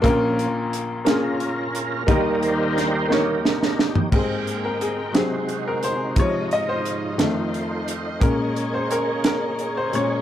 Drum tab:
CC |------------|------------|x-----------|------------|
HH |x-x-x-x-x-x-|x-x-x-------|--x-x-x-x-x-|x-x-x-x-x-x-|
SD |------o-----|----o-o-ooo-|------o-----|------o-----|
FT |------------|-----------o|------------|------------|
BD |o-----------|o-----------|o-----------|o-----------|

CC |------------|
HH |x-x-x-x-x-x-|
SD |------o-----|
FT |------------|
BD |o-----------|